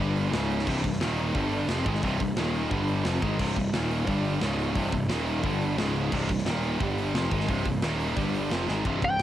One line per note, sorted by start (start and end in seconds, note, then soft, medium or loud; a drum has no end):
0.00 0.30 G1 medium
0.00 0.32 G2 medium
0.00 0.32 D3 loud
0.00 0.32 G3 loud
0.16 open hi-hat medium
0.33 0.65 C#1 loud
0.33 0.66 C#2 medium
0.33 0.66 G#2 loud
0.33 0.67 C#3 loud
0.33 snare loud
0.33 open hi-hat medium
0.50 open hi-hat medium
0.59 snare soft
0.66 0.83 C1 loud
0.66 0.82 C2 loud
0.66 0.83 G2 loud
0.66 0.84 C3 loud
0.66 kick loud
0.66 crash loud
0.84 1.00 C1 medium
0.84 1.00 C2 medium
0.84 1.01 G2 medium
0.84 kick medium
0.84 open hi-hat medium
0.93 snare soft
1.00 1.33 D#1 loud
1.00 1.34 D#2 loud
1.00 1.34 A#2 loud
1.00 1.35 D#3 loud
1.00 snare loud
1.00 open hi-hat medium
1.18 open hi-hat medium
1.34 1.67 G1 loud
1.34 1.68 G2 loud
1.34 1.68 D3 loud
1.34 1.69 G3 loud
1.34 kick loud
1.34 open hi-hat medium
1.52 open hi-hat medium
1.68 1.84 F1 medium
1.68 1.85 F2 loud
1.68 1.86 C3 loud
1.68 1.86 F3 loud
1.68 snare loud
1.68 open hi-hat medium
1.86 2.02 G#1 loud
1.86 2.03 G#2 loud
1.86 2.03 D#3 loud
1.86 2.03 G#3 loud
1.86 kick loud
1.95 snare soft
2.03 2.19 C1 loud
2.03 2.19 C2 loud
2.03 2.20 G2 loud
2.03 2.20 C3 loud
2.03 kick loud
2.03 open hi-hat medium
2.20 2.36 C1 medium
2.20 2.34 C2 medium
2.20 2.34 G2 medium
2.20 kick medium
2.20 open hi-hat medium
2.36 2.68 D#1 medium
2.36 2.71 D#2 medium
2.36 2.71 A#2 loud
2.36 2.71 D#3 loud
2.36 snare loud
2.36 open hi-hat medium
2.54 open hi-hat medium
2.71 3.03 G1 loud
2.71 3.05 G2 medium
2.71 3.05 D3 loud
2.71 3.05 G3 loud
2.71 kick loud
2.71 open hi-hat medium
2.88 open hi-hat medium
3.05 3.21 F1 medium
3.05 3.22 F2 loud
3.05 3.22 C3 loud
3.05 3.22 F3 loud
3.05 snare loud
3.05 open hi-hat medium
3.22 3.38 G#1 medium
3.22 3.38 G#2 loud
3.22 3.39 D#3 loud
3.22 3.40 G#3 loud
3.22 kick loud
3.22 open hi-hat medium
3.39 3.55 C1 loud
3.39 3.56 C2 loud
3.39 3.56 G2 loud
3.39 3.56 C3 loud
3.39 kick loud
3.39 crash loud
3.56 3.72 C1 medium
3.56 3.70 C2 medium
3.56 3.70 G2 medium
3.56 kick medium
3.56 open hi-hat medium
3.73 4.05 D#1 medium
3.73 4.07 D#2 medium
3.73 4.07 A#2 medium
3.73 4.07 D#3 medium
3.73 snare loud
3.73 open hi-hat medium
3.91 open hi-hat medium
4.07 4.39 G1 loud
4.07 4.40 G2 loud
4.07 4.41 D3 medium
4.07 4.41 G3 loud
4.07 kick loud
4.07 open hi-hat medium
4.24 open hi-hat medium
4.41 4.73 C#1 loud
4.41 4.73 C#2 loud
4.41 4.74 G#2 loud
4.41 4.75 C#3 loud
4.41 snare loud
4.41 open hi-hat medium
4.59 open hi-hat medium
4.74 4.91 C1 loud
4.74 4.90 C2 loud
4.74 4.90 G2 loud
4.74 4.92 C3 loud
4.74 kick loud
4.74 open hi-hat medium
4.91 5.08 C1 medium
4.91 5.06 C2 medium
4.91 5.06 G2 medium
4.91 kick loud
4.91 open hi-hat medium
5.08 5.41 D#1 loud
5.08 5.42 D#2 medium
5.08 5.43 A#2 medium
5.08 5.43 D#3 medium
5.08 snare loud
5.08 open hi-hat medium
5.27 open hi-hat medium
5.42 5.75 G1 loud
5.42 5.76 G2 loud
5.42 5.77 D3 loud
5.42 5.77 G3 loud
5.42 kick loud
5.42 open hi-hat medium
5.61 open hi-hat medium
5.77 6.10 C#1 loud
5.77 6.11 C#2 loud
5.77 6.11 G#2 loud
5.77 6.12 C#3 loud
5.77 snare loud
5.77 open hi-hat medium
5.95 open hi-hat medium
6.12 6.28 C1 loud
6.12 6.28 C2 loud
6.12 6.28 G2 loud
6.12 6.29 C3 loud
6.12 kick loud
6.12 crash loud
6.29 6.45 C1 medium
6.29 6.43 C2 medium
6.29 6.43 G2 medium
6.29 kick medium
6.29 open hi-hat medium
6.38 snare soft
6.46 6.78 D#1 loud
6.46 6.79 D#2 medium
6.46 6.79 A#2 loud
6.46 6.80 D#3 loud
6.46 snare loud
6.46 open hi-hat medium
6.63 open hi-hat medium
6.79 7.12 G1 loud
6.79 7.13 G2 medium
6.79 7.14 D3 loud
6.79 7.14 G3 loud
6.79 kick loud
6.79 open hi-hat medium
6.98 open hi-hat medium
7.14 7.30 F1 medium
7.14 7.31 F2 loud
7.14 7.31 C3 medium
7.14 7.31 F3 loud
7.14 snare loud
7.14 open hi-hat medium
7.31 7.47 G#1 loud
7.31 7.48 G#2 medium
7.31 7.48 D#3 loud
7.31 7.49 G#3 loud
7.31 kick loud
7.31 open hi-hat medium
7.40 snare soft
7.48 7.64 C1 loud
7.48 7.65 C2 loud
7.48 7.65 G2 loud
7.48 7.66 C3 loud
7.48 kick loud
7.48 open hi-hat medium
7.65 7.81 C1 medium
7.65 7.79 C2 medium
7.65 7.80 G2 medium
7.65 kick loud
7.65 open hi-hat medium
7.82 8.14 D#1 loud
7.82 8.16 D#2 medium
7.82 8.17 A#2 medium
7.82 8.17 D#3 medium
7.82 snare loud
7.82 open hi-hat medium
8.00 open hi-hat medium
8.17 8.49 G1 loud
8.17 8.50 G2 medium
8.17 8.51 D3 medium
8.17 8.51 G3 loud
8.17 kick loud
8.17 open hi-hat medium
8.34 open hi-hat medium
8.51 8.67 F1 medium
8.51 8.68 F2 medium
8.51 8.68 C3 loud
8.51 8.68 F3 loud
8.51 snare loud
8.68 8.85 G#1 loud
8.68 8.85 G#2 medium
8.68 8.85 D#3 loud
8.68 8.85 G#3 loud
8.68 snare medium
8.85 9.01 C1 medium
8.85 9.01 C2 loud
8.85 9.01 G2 loud
8.85 9.02 C3 loud
8.85 kick loud
8.85 ride loud
9.02 9.18 C1 medium
9.02 9.16 C2 medium
9.02 9.16 G2 medium
9.02 9.22 G5 loud
9.02 kick medium
9.02 ride medium
9.19 ride loud